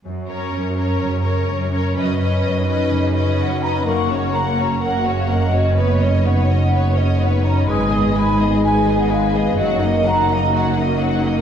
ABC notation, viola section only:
X:1
M:4/4
L:1/8
Q:1/4=126
K:F#
V:1 name="Viola section"
z C2 C2 C2 C | C C2 C2 C2 C | A, C A, C A, C A, C | B, C B, C B, C B, C |
G, B, G, B, G, B, G, B, | F, A, F, A, F, A, F, A, |]